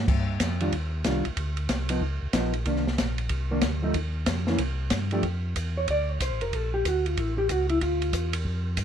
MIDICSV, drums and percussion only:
0, 0, Header, 1, 2, 480
1, 0, Start_track
1, 0, Tempo, 322581
1, 107, Time_signature, 4, 2, 24, 8
1, 13160, End_track
2, 0, Start_track
2, 0, Title_t, "Drums"
2, 116, Note_on_c, 9, 36, 62
2, 119, Note_on_c, 9, 49, 70
2, 265, Note_off_c, 9, 36, 0
2, 268, Note_off_c, 9, 49, 0
2, 591, Note_on_c, 9, 44, 52
2, 591, Note_on_c, 9, 51, 66
2, 595, Note_on_c, 9, 36, 21
2, 596, Note_on_c, 9, 38, 59
2, 740, Note_off_c, 9, 44, 0
2, 740, Note_off_c, 9, 51, 0
2, 744, Note_off_c, 9, 36, 0
2, 745, Note_off_c, 9, 38, 0
2, 899, Note_on_c, 9, 51, 45
2, 1048, Note_off_c, 9, 51, 0
2, 1078, Note_on_c, 9, 51, 55
2, 1080, Note_on_c, 9, 36, 16
2, 1227, Note_off_c, 9, 51, 0
2, 1228, Note_off_c, 9, 36, 0
2, 1552, Note_on_c, 9, 44, 52
2, 1552, Note_on_c, 9, 51, 63
2, 1556, Note_on_c, 9, 36, 21
2, 1556, Note_on_c, 9, 38, 59
2, 1701, Note_off_c, 9, 44, 0
2, 1701, Note_off_c, 9, 51, 0
2, 1705, Note_off_c, 9, 36, 0
2, 1705, Note_off_c, 9, 38, 0
2, 1858, Note_on_c, 9, 51, 43
2, 2006, Note_off_c, 9, 51, 0
2, 2035, Note_on_c, 9, 51, 59
2, 2037, Note_on_c, 9, 36, 17
2, 2184, Note_off_c, 9, 51, 0
2, 2186, Note_off_c, 9, 36, 0
2, 2334, Note_on_c, 9, 51, 45
2, 2483, Note_off_c, 9, 51, 0
2, 2512, Note_on_c, 9, 44, 49
2, 2512, Note_on_c, 9, 51, 63
2, 2516, Note_on_c, 9, 36, 21
2, 2517, Note_on_c, 9, 38, 57
2, 2661, Note_off_c, 9, 44, 0
2, 2661, Note_off_c, 9, 51, 0
2, 2665, Note_off_c, 9, 36, 0
2, 2666, Note_off_c, 9, 38, 0
2, 2810, Note_on_c, 9, 51, 68
2, 2959, Note_off_c, 9, 51, 0
2, 2993, Note_on_c, 9, 36, 18
2, 3141, Note_off_c, 9, 36, 0
2, 3467, Note_on_c, 9, 44, 56
2, 3467, Note_on_c, 9, 51, 67
2, 3471, Note_on_c, 9, 36, 23
2, 3472, Note_on_c, 9, 38, 65
2, 3616, Note_off_c, 9, 44, 0
2, 3616, Note_off_c, 9, 51, 0
2, 3620, Note_off_c, 9, 36, 0
2, 3621, Note_off_c, 9, 38, 0
2, 3772, Note_on_c, 9, 51, 44
2, 3921, Note_off_c, 9, 51, 0
2, 3950, Note_on_c, 9, 51, 54
2, 3954, Note_on_c, 9, 36, 17
2, 4099, Note_off_c, 9, 51, 0
2, 4103, Note_off_c, 9, 36, 0
2, 4112, Note_on_c, 9, 38, 26
2, 4261, Note_off_c, 9, 38, 0
2, 4277, Note_on_c, 9, 38, 45
2, 4425, Note_off_c, 9, 38, 0
2, 4434, Note_on_c, 9, 36, 25
2, 4436, Note_on_c, 9, 44, 53
2, 4436, Note_on_c, 9, 51, 62
2, 4441, Note_on_c, 9, 38, 64
2, 4583, Note_off_c, 9, 36, 0
2, 4585, Note_off_c, 9, 44, 0
2, 4585, Note_off_c, 9, 51, 0
2, 4590, Note_off_c, 9, 38, 0
2, 4732, Note_on_c, 9, 51, 46
2, 4880, Note_off_c, 9, 51, 0
2, 4899, Note_on_c, 9, 51, 57
2, 4910, Note_on_c, 9, 36, 25
2, 5048, Note_off_c, 9, 51, 0
2, 5059, Note_off_c, 9, 36, 0
2, 5377, Note_on_c, 9, 44, 53
2, 5377, Note_on_c, 9, 51, 61
2, 5382, Note_on_c, 9, 38, 67
2, 5390, Note_on_c, 9, 36, 24
2, 5526, Note_off_c, 9, 44, 0
2, 5526, Note_off_c, 9, 51, 0
2, 5531, Note_off_c, 9, 38, 0
2, 5538, Note_off_c, 9, 36, 0
2, 5864, Note_on_c, 9, 51, 61
2, 5870, Note_on_c, 9, 36, 22
2, 6012, Note_off_c, 9, 51, 0
2, 6019, Note_off_c, 9, 36, 0
2, 6341, Note_on_c, 9, 44, 48
2, 6341, Note_on_c, 9, 51, 68
2, 6346, Note_on_c, 9, 38, 67
2, 6349, Note_on_c, 9, 36, 23
2, 6490, Note_off_c, 9, 44, 0
2, 6490, Note_off_c, 9, 51, 0
2, 6494, Note_off_c, 9, 38, 0
2, 6498, Note_off_c, 9, 36, 0
2, 6649, Note_on_c, 9, 38, 47
2, 6798, Note_off_c, 9, 38, 0
2, 6820, Note_on_c, 9, 51, 63
2, 6828, Note_on_c, 9, 36, 18
2, 6969, Note_off_c, 9, 51, 0
2, 6976, Note_off_c, 9, 36, 0
2, 7294, Note_on_c, 9, 44, 55
2, 7294, Note_on_c, 9, 51, 64
2, 7298, Note_on_c, 9, 38, 63
2, 7306, Note_on_c, 9, 36, 25
2, 7442, Note_off_c, 9, 44, 0
2, 7442, Note_off_c, 9, 51, 0
2, 7447, Note_off_c, 9, 38, 0
2, 7455, Note_off_c, 9, 36, 0
2, 7602, Note_on_c, 9, 51, 43
2, 7751, Note_off_c, 9, 51, 0
2, 7780, Note_on_c, 9, 51, 50
2, 7787, Note_on_c, 9, 36, 21
2, 7929, Note_off_c, 9, 51, 0
2, 7936, Note_off_c, 9, 36, 0
2, 8269, Note_on_c, 9, 36, 20
2, 8269, Note_on_c, 9, 44, 48
2, 8269, Note_on_c, 9, 51, 62
2, 8418, Note_off_c, 9, 36, 0
2, 8418, Note_off_c, 9, 44, 0
2, 8418, Note_off_c, 9, 51, 0
2, 8745, Note_on_c, 9, 51, 58
2, 8750, Note_on_c, 9, 36, 17
2, 8894, Note_off_c, 9, 51, 0
2, 8899, Note_off_c, 9, 36, 0
2, 9231, Note_on_c, 9, 44, 50
2, 9231, Note_on_c, 9, 51, 64
2, 9233, Note_on_c, 9, 36, 19
2, 9380, Note_off_c, 9, 44, 0
2, 9380, Note_off_c, 9, 51, 0
2, 9382, Note_off_c, 9, 36, 0
2, 9539, Note_on_c, 9, 51, 41
2, 9688, Note_off_c, 9, 51, 0
2, 9714, Note_on_c, 9, 51, 53
2, 9715, Note_on_c, 9, 36, 20
2, 9863, Note_off_c, 9, 36, 0
2, 9863, Note_off_c, 9, 51, 0
2, 10195, Note_on_c, 9, 44, 50
2, 10195, Note_on_c, 9, 51, 58
2, 10196, Note_on_c, 9, 36, 15
2, 10344, Note_off_c, 9, 44, 0
2, 10344, Note_off_c, 9, 51, 0
2, 10345, Note_off_c, 9, 36, 0
2, 10503, Note_on_c, 9, 51, 44
2, 10652, Note_off_c, 9, 51, 0
2, 10674, Note_on_c, 9, 36, 24
2, 10674, Note_on_c, 9, 51, 58
2, 10822, Note_off_c, 9, 51, 0
2, 10823, Note_off_c, 9, 36, 0
2, 11147, Note_on_c, 9, 44, 59
2, 11147, Note_on_c, 9, 51, 61
2, 11149, Note_on_c, 9, 36, 20
2, 11296, Note_off_c, 9, 44, 0
2, 11296, Note_off_c, 9, 51, 0
2, 11298, Note_off_c, 9, 36, 0
2, 11448, Note_on_c, 9, 51, 45
2, 11597, Note_off_c, 9, 51, 0
2, 11625, Note_on_c, 9, 51, 56
2, 11628, Note_on_c, 9, 36, 20
2, 11774, Note_off_c, 9, 51, 0
2, 11776, Note_off_c, 9, 36, 0
2, 11930, Note_on_c, 9, 51, 47
2, 12079, Note_off_c, 9, 51, 0
2, 12098, Note_on_c, 9, 44, 56
2, 12098, Note_on_c, 9, 51, 63
2, 12102, Note_on_c, 9, 36, 22
2, 12247, Note_off_c, 9, 44, 0
2, 12247, Note_off_c, 9, 51, 0
2, 12251, Note_off_c, 9, 36, 0
2, 12398, Note_on_c, 9, 51, 70
2, 12547, Note_off_c, 9, 51, 0
2, 12574, Note_on_c, 9, 36, 23
2, 12723, Note_off_c, 9, 36, 0
2, 13049, Note_on_c, 9, 44, 50
2, 13049, Note_on_c, 9, 51, 70
2, 13052, Note_on_c, 9, 36, 22
2, 13160, Note_off_c, 9, 36, 0
2, 13160, Note_off_c, 9, 44, 0
2, 13160, Note_off_c, 9, 51, 0
2, 13160, End_track
0, 0, End_of_file